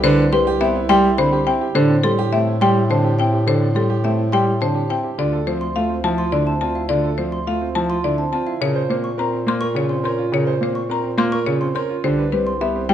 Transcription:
Already playing: C2
0.03 D3 B4 C5
0.18 C4
0.32 G3 G4 B4 C6
0.47 G4
0.61 B3 C4 E5 G5
0.75 E4
0.89 G3 G4 G5 C6
1.04 E4
1.18 D3 C4 C5 B5
1.33 G4
1.46 C4 E4 G5
1.61 G4
1.75 A2 D3 A4 C5
1.90 C4
2.03 G3 G4 A4 C6
2.19 G4
2.33 A3 C4 E5 G5
2.47 E4
2.61 G3 G4 G5 C6
2.76 E4
2.90 D3 C4 C5 A5
3.04 G4
3.19 C4 E4 G5
3.33 G4
3.47 D3 A4 C5
3.61 C4
3.75 G3 G4 A4 C6
3.90 G4
4.04 A3 C4 E5 G5
4.18 E4
4.32 G3 G4 G5 C6
4.47 E4
4.61 D3 C4 C5 A5
4.75 G4
4.89 C4 E4 G5
5.04 G4
5.18 D2 D3 F4 D5
5.33 A4
5.47 F3 C4 C5
5.61 C6
5.75 A3 F4 F5
5.90 C4
6.04 F3 E4 A5
6.18 F4 C6
6.32 D3 E4 D5
6.47 C4 A5
6.61 C4 F4 A5
6.75 E4 F5
6.89 D3 F4 D5
7.04 A4
7.18 F3 C4 C5
7.32 C6
7.47 A3 F4 F5
7.61 C4
7.75 F3 E4 A5
7.90 F4 C6
8.04 D3 E4 D5
8.18 C4 A5
8.32 C4 F4 A5
8.46 E4 F5
8.61 A#2 C#3 A#4 C#5
8.75 C5
8.89 A#3 C4 C5
9.04 C#6
9.18 C4 A#4 A#5
9.33 C4
9.47 A#3 F4 C6
9.61 A#4 C#6
9.75 C#3 F4 C#5
9.89 C4 C6
10.03 C#4 A#4 C6
10.18 F4
10.32 C#3 A#4 C#5
10.47 C5
10.61 A#3 C4 C5
10.75 C#6
10.89 C4 A#4 A#5
11.04 C4
11.18 A#3 F4 C6
11.32 A#4 C#6
11.46 C#3 F4 C#5
11.61 C4 C6
11.75 C#4 A#4 C6
11.89 F4
12.03 C2 D3 G4 C5
12.18 B4
12.32 G3 C4 B4
12.47 C6
12.61 B3 G4 E5
12.75 C4
12.89 G3 E4 G5

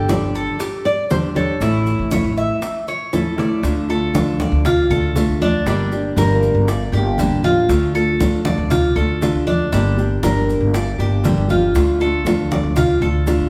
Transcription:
Already playing: G1 A4
0.08 D3 G3 D4 G4 D5, high bongo, high conga, maracas
0.21 G1
0.35 A4, high bongo, high conga, maracas
0.59 G4, muted nylon-string guitar stroke, high bongo, high conga, maracas
0.85 D5, high bongo, high conga, maracas
1.10 D3 G3 D4 G4 C5, high bongo, low bongo, high conga, maracas
1.35 G3 D4 G4 A4 C#5, high bongo, high conga, maracas
1.60 A1 E3 A3 C#4 E4, high bongo, high conga, maracas
1.86 high bongo, high conga, maracas
1.99 A1
2.11 E3 A3 C#4 E4 C#5, high bongo, high conga, maracas
2.23 A1
2.37 E5, high bongo, high conga, maracas
2.62 muted nylon-string guitar stroke, high bongo, high conga, maracas
2.88 C#5, high bongo, high conga, maracas
3.13 E3 A3 C#4 E4 A4, high bongo, high conga, maracas
3.37 A3 C#4 E4 D5, low bongo, maracas
3.63 D2 D3 A3 D4 F4, high bongo, high conga, maracas
3.89 A3 D4 F4 A4, high bongo, high conga, maracas
4.13 D2 D3 A3 D4 F4, high bongo, high conga, maracas
4.40 D5, high bongo, high conga, maracas
4.52 D2
4.65 F4, muted nylon-string guitar stroke, high bongo, high conga, low conga, maracas
4.90 D2 A3 D4 F4 A4, high bongo, high conga, low conga, maracas
5.15 D3 A3 D4 F4, high bongo, low bongo, high conga, maracas
5.28 D2
5.40 A3 D4 F4, high conga, maracas
5.66 G1 D3 G3 A#3 D4 G4, high bongo, high conga, maracas
5.92 A#3 D4 G4, high bongo, high conga, maracas
6.16 G1 D3 G3 A#3 D4 G4 A#4, high bongo, high conga, maracas
6.43 high bongo, high conga, maracas
6.54 G1
6.67 D5, muted nylon-string guitar stroke, high bongo, high conga, maracas
6.92 G1 A#3 D4 G4, high bongo, high conga, maracas
7.18 D3 G3 A#3 D4 G4, high bongo, low bongo, high conga, maracas
7.31 A1
7.44 A#3 D4 F4 G4, high conga, maracas
7.69 D2 D3 A3 D4 F4, high bongo, high conga, maracas
7.94 A3 D4 F4 A4, high bongo, high conga, maracas
8.19 D2 D3 A3 D4 F4, high bongo, high conga, maracas
8.45 D5, high bongo, high conga, maracas
8.57 D2
8.70 F4, muted nylon-string guitar stroke, high bongo, high conga, low conga, maracas
8.95 D2 A3 D4 F4 A4, high bongo, high conga, maracas
9.21 D3 A3 D4 F4, high bongo, low bongo, high conga, maracas
9.34 D2
9.47 A3 D4 F4, high conga, maracas
9.72 G1 D3 G3 A#3 D4 G4, high bongo, high conga, maracas
9.97 A#3 D4 G4, high bongo, high conga, maracas
10.23 G1 D3 G3 A#3 D4 G4 A#4, high bongo, high conga, maracas
10.49 high bongo, high conga, maracas
10.60 G1
10.74 D5, muted nylon-string guitar stroke, high bongo, high conga, maracas
10.98 G1 A#3 D4 G4, high bongo, high conga, maracas
11.23 D3 G3 A#3 D4 G4, high bongo, low bongo, high conga, maracas
11.37 G1
11.49 A#3 D4 F4 G4, high conga, maracas
11.74 D2 D3 A3 D4 F4, high bongo, high conga, maracas
12.00 A3 D4 F4 A4, high bongo, high conga, maracas
12.25 D2 D3 A3 D4 F4, high bongo, high conga, maracas
12.51 D5, high bongo, high conga, maracas
12.63 D2
12.75 F4, muted nylon-string guitar stroke, high bongo, high conga, low conga, maracas
13.01 D2 A3 D4 F4 A4, high bongo, high conga, maracas
13.26 D3 A3 D4 F4, high bongo, low bongo, high conga, maracas
13.39 A1

